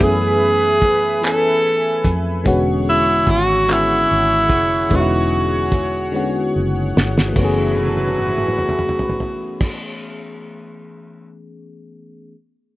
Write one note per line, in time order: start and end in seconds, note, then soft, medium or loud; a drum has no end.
0.00 1.65 F#2 loud
0.00 1.21 E3 medium
0.00 2.48 A3 medium
0.00 1.23 B3 medium
0.00 0.02 C#4 medium
0.00 0.92 C#4 medium
0.00 0.03 G#4 medium
0.00 0.93 G#4 loud
0.00 1.25 G#4 loud
0.00 2.41 B4 medium
0.00 2.42 E5 medium
0.00 2.42 G#5 medium
0.00 2.41 B5 medium
0.00 kick loud
0.00 closed hi-hat medium
0.82 kick medium
0.82 closed hi-hat medium
1.21 2.13 E3 medium
1.21 2.14 B3 medium
1.21 2.15 C#4 medium
1.21 2.14 A4 medium
1.21 clap loud
1.21 closed hi-hat medium
1.25 2.13 A4 loud
1.25 2.15 G#5 medium
1.65 2.02 G#2 loud
2.04 2.48 F2 medium
2.04 kick loud
2.04 closed hi-hat medium
2.44 3.24 E1 loud
2.44 3.36 D3 loud
2.44 3.36 G#3 loud
2.44 3.37 B3 medium
2.44 3.37 C#4 loud
2.44 3.38 F#4 loud
2.44 7.32 G#4 medium
2.44 7.32 C#5 medium
2.44 7.32 F#5 medium
2.44 7.32 C#6 medium
2.44 kick loud
2.44 closed hi-hat medium
2.89 3.32 E4 loud
3.27 4.05 G#1 medium
3.27 3.74 F#4 loud
3.27 kick medium
3.27 closed hi-hat medium
3.66 4.58 D3 medium
3.66 4.59 G#3 medium
3.66 4.59 B3 medium
3.66 4.60 C#4 medium
3.66 clap loud
3.66 closed hi-hat medium
3.71 4.97 E4 loud
3.71 4.60 F#4 medium
4.11 4.51 G#1 medium
4.50 4.87 F1 loud
4.50 kick loud
4.50 closed hi-hat medium
4.89 6.51 E1 loud
4.89 5.81 D3 medium
4.89 5.81 G#3 medium
4.89 5.82 B3 medium
4.89 5.82 C#4 medium
4.89 4.99 D#4 medium
4.89 kick loud
4.89 closed hi-hat medium
4.96 6.57 F#4 loud
5.00 5.86 E4 loud
5.72 kick medium
5.72 closed hi-hat medium
6.12 7.03 D3 medium
6.12 7.04 G#3 medium
6.12 7.04 B3 medium
6.12 7.05 C#4 medium
6.16 7.06 F#4 loud
6.56 6.92 F#1 loud
6.97 7.33 G1 medium
6.97 snare loud
7.18 snare loud
7.29 9.69 E3 medium
7.33 9.73 F#3 medium
7.33 9.71 A3 medium
7.33 9.73 A3 medium
7.33 9.73 B3 medium
7.33 9.73 E4 medium
7.33 9.73 G#4 medium
7.33 9.73 B4 medium
7.33 kick loud
7.33 crash medium
7.37 9.73 F#1 loud
7.37 9.74 F#4 medium
7.41 9.75 C#4 medium
7.41 9.77 G#4 loud
7.77 high tom medium
7.87 high tom medium
7.97 high tom medium
8.08 high tom medium
8.18 mid tom medium
8.28 mid tom medium
8.38 mid tom medium
8.48 mid tom medium
8.59 mid tom medium
8.69 mid tom medium
8.79 mid tom medium
8.89 mid tom medium
8.99 floor tom medium
9.10 floor tom medium
9.20 floor tom medium
9.61 kick loud
9.61 crash medium